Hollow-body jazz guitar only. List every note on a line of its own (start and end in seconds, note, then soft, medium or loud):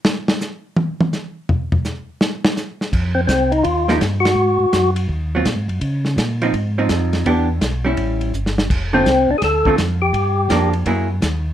3.89 4.00 F3 soft
3.89 4.00 A#3 medium
3.89 4.00 D#4 medium
3.89 4.01 G4 medium
5.35 5.45 F#3 medium
5.35 5.46 C4 medium
5.35 5.46 F4 medium
6.42 6.53 F3 medium
6.42 6.53 C4 medium
6.42 6.53 D#4 medium
6.78 7.24 F3 medium
6.78 7.24 C4 medium
6.78 7.24 D#4 medium
7.26 7.47 E3 soft
7.26 7.47 B3 medium
7.26 7.47 D4 medium
7.26 7.47 G4 medium
7.85 8.31 G3 medium
7.85 8.31 C#4 medium
7.85 8.32 E4 medium
8.93 9.04 D3 medium
8.93 9.05 A3 medium
8.93 9.05 C4 medium
8.93 9.05 F4 medium
9.66 9.77 D3 medium
9.66 9.77 A3 medium
9.66 9.78 C4 medium
9.66 9.78 F4 medium
10.51 10.71 F3 medium
10.51 10.72 A#3 medium
10.51 10.72 D4 medium
10.87 11.07 F#3 medium
10.87 11.07 A#3 medium
10.87 11.08 E4 medium
10.87 11.08 G#4 medium